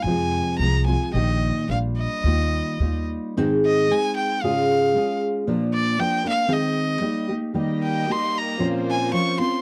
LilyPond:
<<
  \new Staff \with { instrumentName = "Violin" } { \time 2/4 \key ees \major \tempo 4 = 113 aes''4 bes''8 aes''8 | ees''4 f''8 ees''8~ | ees''4. r8 | \key aes \major r8 ees''8 aes''8 g''8 |
f''4. r8 | r8 d''8 g''8 f''8 | ees''4. r8 | r8 g''8 c'''8 bes''8 |
r8 aes''8 des'''8 c'''8 | }
  \new Staff \with { instrumentName = "Violin section" } { \time 2/4 \key ees \major << { r2 | r2 | r2 | \key aes \major r2 |
r2 | r2 | r2 | <g' ees''>2 |
<f' c''>2 | } \\ { r2 | r2 | r2 | r2 |
r2 | r2 | r2 | bes2~ |
bes2 | } >> }
  \new Staff \with { instrumentName = "Nylon-string guitar" } { \time 2/4 \key ees \major <f, c f aes c' f'>4 <f aes c' f'>8 <f aes c' f'>8 | <bes, ees bes ees' g'>4 <g bes d' f'>4 | <ees g bes ees' f'>4 <g bes ees' f'>4 | \key aes \major <aes, ees aes c' ees' aes'>4 <aes c' ees' aes'>4 |
<aes, des aes des' f' aes'>4 <aes des' f' aes'>4 | <bes, f bes d' bes'>4 <f bes d' bes'>8 <bes d' bes'>8 | <ees aes c' aes'>4 <g bes ees' g'>8 <bes ees' g'>8 | <ees g bes ees' g'>4 <g bes ees' g'>4 |
<bes, f c' des' f'>4 <f c' des' f'>8 <c' des' f'>8 | }
  \new Staff \with { instrumentName = "Upright bass" } { \clef bass \time 2/4 \key ees \major f,4 c,4 | bes,,4 bes,,4 | ees,4 ees,4 | \key aes \major r2 |
r2 | r2 | r2 | r2 |
r2 | }
>>